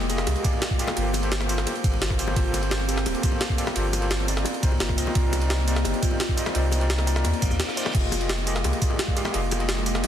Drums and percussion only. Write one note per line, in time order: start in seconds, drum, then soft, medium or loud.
0.01 high bongo medium
0.10 closed hi-hat medium
0.10 ride medium
0.10 tambourine medium
0.18 snare medium
0.18 closed hi-hat soft
0.27 closed hi-hat medium
0.27 ride medium
0.27 tambourine soft
0.27 high bongo loud
0.36 closed hi-hat soft
0.44 kick loud
0.44 closed hi-hat medium
0.44 ride medium
0.44 tambourine medium
0.53 high bongo medium
0.62 snare loud
0.62 closed hi-hat medium
0.62 ride medium
0.71 kick medium
0.79 closed hi-hat medium
0.79 ride medium
0.79 tambourine medium
0.87 snare medium
0.87 high bongo loud
0.97 closed hi-hat medium
0.97 ride medium
1.14 closed hi-hat medium
1.14 ride medium
1.14 tambourine medium
1.14 high bongo loud
1.23 closed hi-hat soft
1.32 snare loud
1.32 closed hi-hat medium
1.32 ride medium
1.41 snare medium
1.41 high bongo medium
1.49 closed hi-hat medium
1.49 ride medium
1.49 tambourine medium
1.58 snare medium
1.58 closed hi-hat soft
1.67 closed hi-hat medium
1.67 ride medium
1.67 tambourine soft
1.67 high bongo loud
1.76 closed hi-hat soft
1.84 kick loud
1.84 closed hi-hat medium
1.84 ride medium
1.84 tambourine medium
1.94 high bongo medium
2.02 snare loud
2.02 closed hi-hat medium
2.02 ride medium
2.10 kick medium
2.10 snare soft
2.19 closed hi-hat medium
2.19 ride medium
2.19 tambourine medium
2.28 high bongo loud
2.36 kick loud
2.36 closed hi-hat medium
2.36 ride medium
2.54 closed hi-hat medium
2.54 ride medium
2.54 tambourine medium
2.54 high bongo medium
2.63 closed hi-hat soft
2.71 snare loud
2.71 closed hi-hat medium
2.71 ride medium
2.80 high bongo medium
2.89 closed hi-hat medium
2.89 ride medium
2.89 tambourine medium
2.97 snare medium
2.97 closed hi-hat soft
3.06 closed hi-hat medium
3.06 ride medium
3.06 tambourine soft
3.06 high bongo medium
3.15 closed hi-hat soft
3.23 kick loud
3.23 closed hi-hat medium
3.23 ride medium
3.23 tambourine medium
3.32 high bongo medium
3.41 snare loud
3.41 closed hi-hat medium
3.41 ride medium
3.50 kick medium
3.58 closed hi-hat medium
3.58 ride medium
3.58 tambourine medium
3.67 snare medium
3.67 high bongo medium
3.76 closed hi-hat loud
3.76 ride medium
3.93 closed hi-hat medium
3.93 ride medium
3.93 tambourine medium
3.93 high bongo medium
4.02 closed hi-hat soft
4.11 snare loud
4.11 closed hi-hat medium
4.11 ride medium
4.20 high bongo medium
4.28 closed hi-hat medium
4.28 ride medium
4.28 tambourine medium
4.37 snare medium
4.37 closed hi-hat soft
4.45 closed hi-hat medium
4.45 ride medium
4.45 tambourine soft
4.45 high bongo medium
4.54 closed hi-hat soft
4.63 kick loud
4.63 closed hi-hat medium
4.63 ride medium
4.63 tambourine medium
4.72 high bongo medium
4.80 snare loud
4.80 closed hi-hat medium
4.80 ride medium
4.89 kick medium
4.89 snare soft
4.98 closed hi-hat medium
4.98 ride medium
4.98 tambourine medium
5.07 high bongo medium
5.15 kick loud
5.15 closed hi-hat loud
5.15 ride medium
5.33 closed hi-hat medium
5.33 ride medium
5.33 tambourine medium
5.33 high bongo loud
5.42 closed hi-hat soft
5.50 snare loud
5.50 closed hi-hat loud
5.50 ride medium
5.58 high bongo medium
5.68 closed hi-hat medium
5.68 ride medium
5.68 tambourine medium
5.76 snare medium
5.76 closed hi-hat soft
5.85 closed hi-hat loud
5.85 ride medium
5.85 tambourine soft
5.85 high bongo medium
5.94 closed hi-hat soft
6.03 kick loud
6.03 closed hi-hat medium
6.03 ride medium
6.03 tambourine medium
6.11 high bongo medium
6.20 snare loud
6.20 closed hi-hat loud
6.20 ride medium
6.29 kick medium
6.37 closed hi-hat medium
6.37 ride medium
6.37 tambourine medium
6.46 snare medium
6.46 high bongo medium
6.55 closed hi-hat loud
6.55 ride medium
6.72 closed hi-hat medium
6.72 ride medium
6.72 tambourine medium
6.72 high bongo medium
6.81 closed hi-hat soft
6.90 snare loud
6.90 closed hi-hat loud
6.90 ride medium
6.98 snare medium
6.98 high bongo medium
7.07 closed hi-hat medium
7.07 ride medium
7.07 tambourine medium
7.16 snare medium
7.16 closed hi-hat soft
7.24 closed hi-hat loud
7.24 ride medium
7.24 tambourine soft
7.24 high bongo medium
7.34 closed hi-hat soft
7.42 kick loud
7.42 closed hi-hat medium
7.42 ride medium
7.42 tambourine medium
7.51 tambourine soft
7.51 high bongo medium
7.60 snare loud
7.60 closed hi-hat loud
7.60 ride medium
7.68 snare soft
7.77 closed hi-hat medium
7.77 ride medium
7.77 tambourine medium
7.86 snare medium
7.86 high bongo loud
7.95 kick loud
7.95 closed hi-hat loud
7.95 crash medium
7.95 ride medium
8.12 closed hi-hat medium
8.12 ride soft
8.12 tambourine medium
8.12 high bongo medium
8.21 closed hi-hat soft
8.29 snare loud
8.29 closed hi-hat loud
8.29 ride medium
8.38 high bongo medium
8.47 closed hi-hat medium
8.47 ride medium
8.47 tambourine medium
8.56 snare medium
8.56 closed hi-hat soft
8.64 closed hi-hat loud
8.64 ride medium
8.64 tambourine soft
8.64 high bongo medium
8.73 closed hi-hat soft
8.82 kick loud
8.82 closed hi-hat medium
8.82 ride medium
8.82 tambourine medium
8.90 high bongo medium
8.99 snare loud
8.99 closed hi-hat loud
8.99 ride medium
9.08 kick medium
9.17 closed hi-hat medium
9.17 ride medium
9.17 tambourine medium
9.25 snare medium
9.25 high bongo loud
9.34 closed hi-hat medium
9.34 ride medium
9.51 closed hi-hat medium
9.51 ride medium
9.51 tambourine medium
9.51 high bongo medium
9.60 closed hi-hat soft
9.69 snare loud
9.69 closed hi-hat loud
9.69 ride medium
9.78 high bongo medium
9.86 closed hi-hat medium
9.86 ride medium
9.86 tambourine medium
9.95 snare medium
9.95 closed hi-hat soft
10.04 closed hi-hat medium
10.04 ride medium
10.04 tambourine soft
10.04 high bongo medium